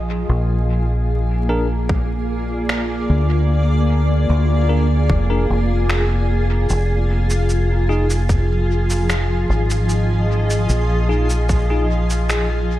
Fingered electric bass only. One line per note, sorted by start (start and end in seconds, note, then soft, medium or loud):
0.00 0.26 A#1 medium
0.29 3.06 A#1 medium
3.10 4.26 D2 medium
4.29 5.11 D2 medium
5.10 5.45 F1 medium
5.50 6.66 F1 medium
6.70 9.46 F1 medium
9.49 10.66 G#1 medium
10.69 12.79 A#1 medium